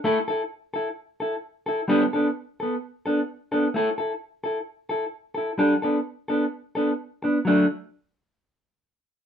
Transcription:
X:1
M:4/4
L:1/8
Q:1/4=129
K:D
V:1 name="Clean electric guitar"
[A,EA] [EA] z [EA] z [EA] z [EA] | [G,B,DA] [B,DA] z [B,A] z [B,DA] z [B,DA] | [A,EA] [EA] z [EA] z [EA] z [EA] | [G,DA] [B,DA] z [B,DA] z [B,DA] z [B,D] |
[F,A,D] z6 z |]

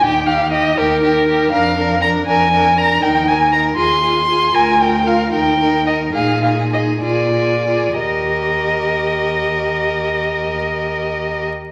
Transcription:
X:1
M:6/8
L:1/8
Q:3/8=75
K:Eb
V:1 name="Violin"
g f e B3 | f2 b a2 b | g a b c'3 | a g f g2 e |
f f e d3 | e6- | e6 |]
V:2 name="Violin"
G G G G G G | B B B B B B | B B B A A A | B B B B B B |
A A A A A A | B6- | B6 |]
V:3 name="Viola"
E E E E E E | D D D D D D | E E E F F F | F F F E E E |
E E E F F F | G6- | G6 |]
V:4 name="Cello" clef=bass
E,,3 E,,3 | F,,3 F,,3 | E,,3 E,,3 | D,,3 E,,3 |
B,,3 B,,3 | E,,6- | E,,6 |]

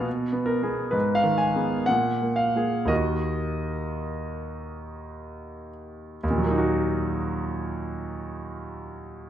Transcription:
X:1
M:3/4
L:1/16
Q:1/4=58
K:Ebm
V:1 name="Grand piano"
z2 B2 c f a2 g2 f2 | e8- e2 z2 | [E,,B,,G,B,EG]12 |]
V:2 name="Grand piano"
(3C,2 C2 [CA]2 (3A,,2 E,2 [CA]2 (3B,,2 B,2 [B,A]2 | [E,,E,B,G]12 | z12 |]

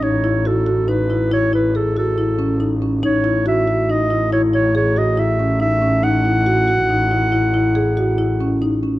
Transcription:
X:1
M:7/4
L:1/8
Q:1/4=140
K:Alyd
V:1 name="Clarinet"
c2 A2 B2 c B A A4 z | c2 e2 d2 c c c d e2 e2 | f12 z2 |]
V:2 name="Marimba"
D E F F D E E E G F E C D C | D E F F D E E E G F E C D C | D E F F D E E E G F E C D C |]
V:3 name="Double bass" clef=bass
A,,,12- A,,,2 | A,,,12- A,,,2- | A,,,12- A,,,2 |]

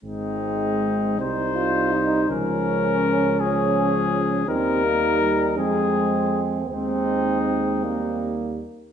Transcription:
X:1
M:6/8
L:1/16
Q:3/8=54
K:Ab
V:1 name="Trumpet"
E6 c6 | B6 A6 | B6 A4 z2 | E8- E2 z2 |]
V:2 name="Flugelhorn"
C6 E2 F2 E2 | D6 D6 | E6 C6 | C6 B,4 z2 |]
V:3 name="Trombone"
z6 E6 | D12 | C2 B,2 G,2 A,6 | C8- C z3 |]
V:4 name="French horn" clef=bass
A,6 G,6 | F,6 F,6 | G,6 A,6 | A,6 G,4 z2 |]
V:5 name="Tuba" clef=bass
A,,,6 C,,6 | D,,12 | E,,6 F,,6 | E,,8- E,,2 z2 |]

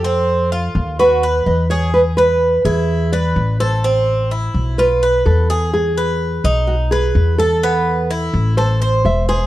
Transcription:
X:1
M:4/4
L:1/8
Q:1/4=127
K:Ephr
V:1 name="Nylon-string guitar"
A4 B2 ^d ^c | B B2 ^G2 d2 c- | c4 B2 A2 | ^G4 ^F G2 A- |
A4 c2 e c |]
V:2 name="Cuban tres"
C2 F2 ^F B2 ^G- | ^G B2 E2 B2 A | C2 E2 F B2 ^G- | ^G B2 ^D2 B2 A |
B,2 E2 A c2 ^G |]
V:3 name="Upright bass" clef=bass
F,,3 ^D,,3 E,,2- | E,,3 E,,3 A,,,2- | A,,,3 B,,,3 E,,2- | E,,3 B,,,3 E,,2- |
E,,3 A,,,3 E,,,2 |]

